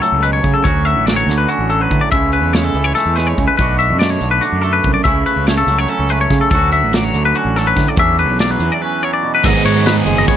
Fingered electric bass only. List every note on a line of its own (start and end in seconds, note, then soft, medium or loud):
0.12 0.39 C#2 medium
0.44 0.53 C#3 medium
0.65 0.95 D2 medium
0.95 1.22 A1 medium
1.27 1.45 D2 medium
1.59 1.86 A1 medium
1.91 2.00 D3 medium
2.12 2.43 C#2 loud
2.43 2.70 E2 medium
2.74 2.92 C#2 medium
3.06 3.32 E2 medium
3.37 3.46 C#2 medium
3.58 3.92 B1 medium
3.90 4.17 F#2 medium
4.21 4.39 B1 medium
4.52 4.79 F#2 medium
4.84 4.93 C2 medium
5.05 5.23 C#2 medium
5.36 5.63 C#2 medium
5.67 5.85 C#2 medium
5.99 6.26 C#2 medium
6.30 6.39 C#3 medium
6.51 6.84 D2 medium
6.84 7.10 A1 medium
7.14 7.32 D2 medium
7.45 7.72 A1 medium
7.77 7.86 D3 medium
7.97 8.28 E2 loud
8.28 8.55 B1 medium
8.59 8.69 E2 medium
9.44 9.53 G#1 loud
9.65 10.00 G#2 loud
10.06 10.24 F#1 loud